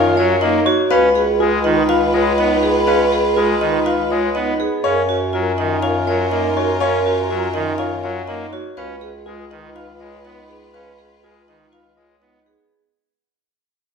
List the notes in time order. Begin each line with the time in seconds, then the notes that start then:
Already playing: F#2 F4 A#4 C#5 F5
0.16 F#3 C#5 F5
0.41 A#3 D#4 D#5
0.66 F#4 C#5
0.90 C#2 C#4 F4 B4 F5
1.15 G#4
1.40 G#3 F4 G#4
1.64 D#3 D#4 D#5
1.89 F4 B4 F5
2.13 G#3 C#5 D#5
2.38 B3 D#4 D#5
2.62 G#4 B4
2.86 C#4 B4 F5
3.12 G#4
3.36 G#3 F4 G#4
3.60 D#3 D#4 D#5
3.86 F4 B4 F5
4.10 G#3 C#5 D#5
4.35 B3 D#4 D#5
4.60 G#4 B4
4.84 F#2 C#4 F4 A#4 C#5 F5
5.09 F#4
5.33 F#3 F4 A#4
5.58 D#3 D#4 D#5
5.82 F4 C#5 F5
6.07 F#3 C#5 F5
6.31 A#3 D#4 D#5
6.57 F#4 C#5
6.80 C#4 A#4 C#5 F5
7.06 F#4
7.29 F#3 F4 A#4
7.54 D#3 D#4 D#5
7.78 F4 C#5 F5
8.02 F#3 C#5 F5
8.27 A#3 D#4 D#5
8.53 F#4 C#5
8.76 C#2 C#4 F4 B4 F5
9.01 G#4
9.26 G#3 F4 G#4
9.51 D#3 D#4 D#5
9.75 F4 B4 F5
10.00 G#3 C#5 D#5
10.24 B3 D#4 D#5
10.49 G#4 B4
10.73 C#4 B4 F5
10.99 G#4
11.23 G#3 F4 G#4
11.47 D#3 D#4 D#5
11.72 F4 B4 F5
11.97 G#3 C#5 D#5
12.20 B3 D#4 D#5
12.46 G#4 B4